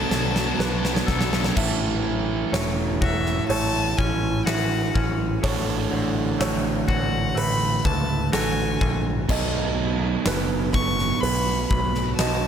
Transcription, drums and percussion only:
0.11 snare loud
0.36 snare loud
0.60 snare loud
0.85 snare loud
0.96 snare loud
1.08 kick medium
1.08 snare loud
1.21 snare loud
1.33 snare loud
1.44 snare loud
1.57 kick loud
1.57 crash loud
2.54 snare loud
2.54 open hi-hat medium
3.02 kick loud
3.26 snare soft
3.50 open hi-hat medium
3.99 kick medium
4.47 snare loud
4.47 open hi-hat medium
4.95 kick medium
5.44 kick loud
5.44 open hi-hat medium
6.41 snare loud
6.41 open hi-hat medium
6.88 kick loud
7.37 open hi-hat medium
7.85 kick medium
8.33 snare loud
8.33 open hi-hat medium
8.81 kick medium
9.29 kick loud
9.29 crash loud
10.26 snare loud
10.26 open hi-hat medium
10.74 kick medium
10.99 snare soft
11.23 open hi-hat medium
11.71 kick medium
11.95 snare soft
12.19 snare loud
12.19 open hi-hat medium

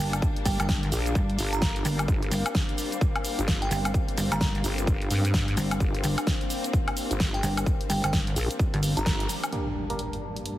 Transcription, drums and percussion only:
0.13 closed hi-hat medium
0.13 cabasa soft
0.13 high woodblock medium
0.22 kick loud
0.22 cabasa soft
0.36 closed hi-hat medium
0.46 kick medium
0.46 open hi-hat loud
0.46 cabasa medium
0.60 closed hi-hat medium
0.60 cabasa soft
0.60 high woodblock medium
0.69 kick loud
0.69 snare loud
0.69 cabasa soft
0.83 closed hi-hat soft
0.92 open hi-hat loud
0.92 cabasa medium
1.06 closed hi-hat medium
1.06 cabasa soft
1.15 kick loud
1.15 cabasa soft
1.30 closed hi-hat soft
1.39 open hi-hat loud
1.39 cabasa medium
1.53 closed hi-hat medium
1.53 cabasa soft
1.62 kick loud
1.62 snare loud
1.62 cabasa soft
1.76 closed hi-hat soft
1.85 open hi-hat loud
1.85 cabasa medium
1.99 closed hi-hat medium
1.99 cabasa soft
1.99 high woodblock medium
2.08 kick loud
2.08 cabasa soft
2.23 closed hi-hat medium
2.32 open hi-hat loud
2.32 cabasa medium
2.46 closed hi-hat medium
2.46 cabasa soft
2.46 high woodblock medium
2.55 kick loud
2.55 snare loud
2.55 cabasa soft
2.69 closed hi-hat soft
2.78 open hi-hat loud
2.78 cabasa medium
2.92 closed hi-hat medium
2.92 cabasa soft
3.01 kick loud
3.01 cabasa soft
3.16 closed hi-hat soft
3.16 high woodblock medium
3.25 open hi-hat loud
3.25 cabasa medium
3.39 closed hi-hat medium
3.39 cabasa soft
3.48 kick loud
3.48 snare loud
3.48 cabasa soft
3.62 closed hi-hat medium
3.71 open hi-hat medium
3.71 cabasa medium
3.85 closed hi-hat medium
3.85 cabasa soft
3.85 high woodblock medium
3.94 kick loud
3.94 cabasa soft
4.09 closed hi-hat medium
4.18 open hi-hat loud
4.18 cabasa medium
4.32 closed hi-hat medium
4.32 cabasa soft
4.32 high woodblock medium
4.41 kick loud
4.41 snare loud
4.41 cabasa soft
4.55 closed hi-hat soft
4.64 open hi-hat medium
4.64 cabasa medium
4.78 closed hi-hat medium
4.78 cabasa soft
4.87 kick loud
4.87 cabasa soft
5.02 closed hi-hat soft
5.11 open hi-hat loud
5.11 cabasa medium
5.25 closed hi-hat medium
5.25 cabasa soft
5.34 kick loud
5.34 snare loud
5.34 cabasa soft
5.48 closed hi-hat medium
5.57 open hi-hat medium
5.57 cabasa medium
5.71 closed hi-hat medium
5.71 cabasa soft
5.71 high woodblock medium
5.80 kick loud
5.80 cabasa soft
5.95 closed hi-hat medium
6.04 open hi-hat loud
6.04 cabasa medium
6.18 closed hi-hat medium
6.18 cabasa soft
6.18 high woodblock medium
6.27 kick loud
6.27 snare loud
6.27 cabasa soft
6.41 closed hi-hat soft
6.50 open hi-hat medium
6.50 cabasa medium
6.64 closed hi-hat medium
6.64 cabasa soft
6.73 kick loud
6.73 cabasa soft
6.88 closed hi-hat soft
6.88 high woodblock medium
6.97 open hi-hat loud
6.97 cabasa medium
7.11 closed hi-hat medium
7.11 cabasa soft
7.20 kick loud
7.20 snare loud
7.20 cabasa soft
7.34 closed hi-hat medium
7.43 open hi-hat medium
7.43 cabasa medium
7.57 closed hi-hat medium
7.57 cabasa soft
7.57 high woodblock medium
7.66 kick loud
7.66 cabasa soft
7.81 closed hi-hat medium
7.90 open hi-hat loud
7.90 cabasa medium
8.04 closed hi-hat medium
8.04 cabasa soft
8.04 high woodblock medium
8.13 kick loud
8.13 snare loud
8.13 cabasa soft
8.27 closed hi-hat soft
8.36 open hi-hat medium
8.36 cabasa medium
8.51 closed hi-hat medium
8.51 cabasa soft
8.59 kick loud
8.59 cabasa soft
8.74 closed hi-hat soft
8.83 open hi-hat loud
8.83 cabasa medium
8.97 closed hi-hat medium
8.97 cabasa soft
9.06 kick loud
9.06 snare loud
9.06 cabasa soft
9.20 closed hi-hat medium
9.29 open hi-hat medium
9.29 cabasa medium
9.44 closed hi-hat medium
9.44 cabasa soft
9.44 high woodblock medium
9.53 closed hi-hat medium
9.90 closed hi-hat soft
9.99 closed hi-hat medium
10.13 closed hi-hat soft
10.37 closed hi-hat medium
10.46 closed hi-hat medium

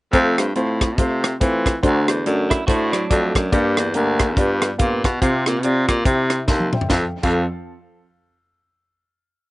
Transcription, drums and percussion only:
0.13 kick medium
0.13 closed hi-hat medium
0.38 cross-stick loud
0.38 closed hi-hat medium
0.55 closed hi-hat medium
0.81 kick medium
0.81 cross-stick loud
0.81 closed hi-hat medium
0.98 kick loud
0.98 closed hi-hat medium
1.24 cross-stick medium
1.24 closed hi-hat medium
1.41 kick medium
1.41 closed hi-hat medium
1.66 kick medium
1.66 cross-stick medium
1.66 closed hi-hat medium
1.83 kick medium
1.83 closed hi-hat medium
2.08 cross-stick loud
2.08 closed hi-hat medium
2.26 closed hi-hat medium
2.51 kick medium
2.51 cross-stick medium
2.51 closed hi-hat medium
2.68 kick loud
2.68 closed hi-hat medium
2.93 cross-stick medium
2.93 closed hi-hat medium
3.11 kick medium
3.11 closed hi-hat medium
3.35 kick medium
3.35 cross-stick loud
3.35 closed hi-hat medium
3.53 kick loud
3.53 closed hi-hat medium
3.77 cross-stick loud
3.77 closed hi-hat medium
3.94 closed hi-hat medium
4.19 kick medium
4.19 cross-stick loud
4.19 closed hi-hat medium
4.37 kick medium
4.37 closed hi-hat medium
4.62 cross-stick medium
4.62 closed hi-hat medium
4.79 kick loud
4.79 closed hi-hat medium
5.04 kick medium
5.04 cross-stick medium
5.04 closed hi-hat medium
5.22 kick medium
5.22 closed hi-hat medium
5.46 cross-stick loud
5.46 closed hi-hat medium
5.63 closed hi-hat medium
5.88 kick medium
5.88 cross-stick medium
5.88 closed hi-hat medium
6.05 kick loud
6.05 closed hi-hat medium
6.30 cross-stick medium
6.30 closed hi-hat medium
6.48 kick loud
6.48 snare medium
6.60 high tom soft
6.73 mid tom medium
6.81 floor tom medium
6.90 kick medium
6.90 snare medium
7.23 kick medium
7.23 crash medium

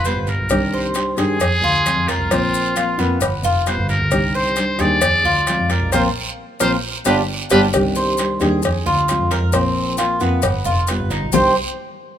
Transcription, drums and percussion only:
0.05 short guiro medium
0.05 maracas medium
0.27 short guiro medium
0.27 maracas soft
0.49 cowbell loud
0.49 long guiro medium
0.49 maracas medium
0.94 cowbell medium
0.94 short guiro medium
0.94 maracas medium
1.17 cowbell medium
1.17 short guiro medium
1.17 maracas soft
1.40 cowbell loud
1.40 long guiro medium
1.40 maracas medium
1.86 cowbell medium
1.86 short guiro medium
1.86 maracas medium
2.08 cowbell medium
2.08 short guiro medium
2.08 maracas soft
2.31 cowbell loud
2.31 long guiro medium
2.31 maracas medium
2.54 maracas medium
2.76 cowbell medium
2.76 short guiro medium
2.76 maracas medium
2.99 short guiro medium
2.99 maracas soft
3.21 cowbell loud
3.21 long guiro medium
3.21 maracas medium
3.44 maracas medium
3.66 cowbell medium
3.66 short guiro medium
3.66 maracas medium
3.89 short guiro medium
3.89 maracas soft
4.11 cowbell loud
4.11 long guiro medium
4.11 maracas medium
4.56 cowbell medium
4.56 short guiro medium
4.56 maracas medium
4.79 cowbell medium
4.79 short guiro medium
4.79 maracas soft
5.01 cowbell loud
5.01 long guiro medium
5.01 maracas medium
5.47 cowbell medium
5.47 short guiro medium
5.47 maracas medium
5.70 cowbell medium
5.70 short guiro medium
5.70 maracas soft
5.92 cowbell medium
5.92 long guiro loud
5.92 maracas loud
6.60 cowbell loud
6.60 long guiro medium
6.60 maracas loud
7.05 cowbell loud
7.05 long guiro loud
7.05 maracas medium
7.50 cowbell loud
7.50 long guiro loud
7.50 maracas loud
7.73 cowbell loud
7.73 long guiro medium
7.73 maracas medium
7.95 maracas medium
8.17 cowbell medium
8.17 short guiro medium
8.17 maracas medium
8.40 cowbell medium
8.40 short guiro medium
8.40 maracas soft
8.62 cowbell loud
8.62 long guiro medium
8.62 maracas medium
9.08 cowbell medium
9.08 short guiro medium
9.08 maracas medium
9.31 cowbell medium
9.31 short guiro medium
9.31 maracas soft
9.52 cowbell loud
9.52 long guiro medium
9.52 maracas medium
9.97 cowbell medium
9.97 short guiro medium
9.97 maracas medium
10.20 short guiro medium
10.20 maracas soft
10.42 cowbell loud
10.42 long guiro medium
10.42 maracas medium
10.65 maracas medium
10.87 cowbell medium
10.87 short guiro medium
10.87 maracas medium
11.10 short guiro medium
11.10 maracas soft
11.32 low bongo loud
11.32 long guiro loud
11.32 maracas loud

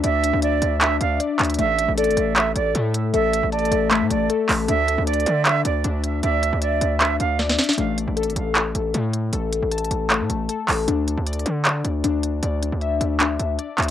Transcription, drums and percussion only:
0.04 closed hi-hat medium
0.24 closed hi-hat medium
0.42 closed hi-hat medium
0.62 closed hi-hat medium
0.81 clap loud
0.81 closed hi-hat medium
1.01 closed hi-hat medium
1.20 closed hi-hat medium
1.39 clap medium
1.39 closed hi-hat soft
1.39 open hi-hat medium
1.45 closed hi-hat medium
1.50 closed hi-hat medium
1.54 closed hi-hat medium
1.59 closed hi-hat medium
1.79 closed hi-hat medium
1.97 closed hi-hat medium
2.04 closed hi-hat medium
2.10 closed hi-hat soft
2.17 closed hi-hat medium
2.36 clap loud
2.36 closed hi-hat medium
2.56 closed hi-hat medium
2.75 closed hi-hat medium
2.94 closed hi-hat medium
3.14 closed hi-hat medium
3.33 closed hi-hat medium
3.52 closed hi-hat medium
3.59 closed hi-hat medium
3.65 closed hi-hat soft
3.72 closed hi-hat medium
3.91 clap loud
3.91 closed hi-hat medium
4.10 closed hi-hat medium
4.30 closed hi-hat medium
4.49 clap medium
4.49 open hi-hat medium
4.68 closed hi-hat medium
4.88 closed hi-hat medium
5.07 closed hi-hat medium
5.14 closed hi-hat medium
5.20 closed hi-hat soft
5.26 closed hi-hat medium
5.46 clap loud
5.46 closed hi-hat medium
5.65 closed hi-hat medium
5.84 closed hi-hat medium
6.04 closed hi-hat medium
6.23 closed hi-hat medium
6.43 closed hi-hat medium
6.62 closed hi-hat medium
6.81 closed hi-hat medium
7.01 clap loud
7.01 closed hi-hat medium
7.20 closed hi-hat medium
7.39 snare medium
7.39 closed hi-hat medium
7.50 snare medium
7.59 snare medium
7.59 closed hi-hat soft
7.59 open hi-hat medium
7.64 closed hi-hat medium
7.69 snare loud
7.69 closed hi-hat medium
7.73 closed hi-hat medium
7.78 closed hi-hat medium
7.98 closed hi-hat medium
8.17 closed hi-hat medium
8.23 closed hi-hat medium
8.30 closed hi-hat soft
8.36 closed hi-hat medium
8.55 clap loud
8.55 closed hi-hat medium
8.75 closed hi-hat medium
8.94 closed hi-hat medium
9.13 closed hi-hat medium
9.33 closed hi-hat medium
9.53 closed hi-hat medium
9.72 closed hi-hat medium
9.78 closed hi-hat medium
9.85 closed hi-hat soft
9.91 closed hi-hat medium
10.10 clap loud
10.10 closed hi-hat medium
10.30 closed hi-hat medium
10.49 closed hi-hat medium
10.68 clap medium
10.68 open hi-hat medium
10.88 closed hi-hat medium
11.08 closed hi-hat medium
11.26 closed hi-hat medium
11.33 closed hi-hat medium
11.39 closed hi-hat soft
11.46 closed hi-hat medium
11.65 clap loud
11.65 closed hi-hat medium
11.85 closed hi-hat medium
12.04 closed hi-hat medium
12.23 closed hi-hat medium
12.43 closed hi-hat medium
12.62 closed hi-hat medium
12.81 closed hi-hat medium
13.01 closed hi-hat medium
13.20 clap loud
13.20 closed hi-hat medium
13.39 closed hi-hat medium
13.59 closed hi-hat medium
13.78 clap medium
13.78 closed hi-hat soft
13.78 open hi-hat medium
13.83 closed hi-hat medium

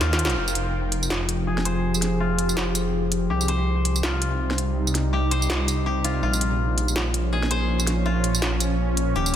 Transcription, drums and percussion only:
0.01 snare medium
0.13 snare medium
0.19 closed hi-hat medium
0.25 snare loud
0.30 closed hi-hat soft
0.48 tambourine medium
0.55 closed hi-hat medium
0.92 closed hi-hat medium
1.03 tambourine medium
1.10 snare loud
1.29 closed hi-hat medium
1.58 snare soft
1.65 closed hi-hat medium
1.94 tambourine medium
2.02 snare soft
2.02 closed hi-hat medium
2.39 closed hi-hat medium
2.49 tambourine medium
2.57 snare loud
2.75 closed hi-hat medium
2.75 tambourine medium
3.12 closed hi-hat medium
3.41 tambourine medium
3.48 closed hi-hat medium
3.85 closed hi-hat medium
3.96 tambourine medium
4.03 snare loud
4.22 closed hi-hat medium
4.51 snare soft
4.58 closed hi-hat medium
4.87 tambourine medium
4.95 snare soft
4.95 closed hi-hat medium
5.31 closed hi-hat medium
5.42 tambourine medium
5.50 snare loud
5.68 closed hi-hat medium
5.68 tambourine medium
6.05 closed hi-hat medium
6.33 tambourine medium
6.41 closed hi-hat medium
6.78 closed hi-hat medium
6.88 tambourine medium
6.96 snare loud
7.14 closed hi-hat medium
7.43 snare soft
7.51 closed hi-hat medium
7.80 tambourine medium
7.87 snare soft
7.87 closed hi-hat medium
8.24 closed hi-hat medium
8.35 tambourine medium
8.42 snare loud
8.60 closed hi-hat medium
8.60 tambourine medium
8.97 closed hi-hat medium
9.26 tambourine medium

